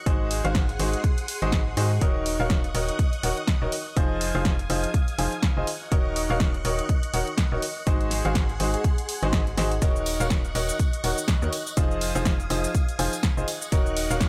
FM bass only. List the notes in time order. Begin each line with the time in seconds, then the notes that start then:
0.06 G#1
0.45 G#1
0.79 G#1
1.42 G#1
1.77 G#2
2.01 D#1
2.40 D#1
2.75 D#1
3.23 D#1
3.62 D#1
3.97 F1
4.35 F1
4.70 F1
5.18 F1
5.57 F1
5.92 D#1
6.30 D#1
6.65 D#1
7.14 D#1
7.52 D#1
7.87 G#1
8.25 G#1
8.60 G#1
9.23 G#1
9.57 G#1
9.82 D#1
10.20 D#1
10.55 D#1
11.04 D#1
11.42 D#2
11.77 F1
12.15 F1
12.50 F1
12.99 F1
13.37 F1
13.72 D#1
14.10 D#1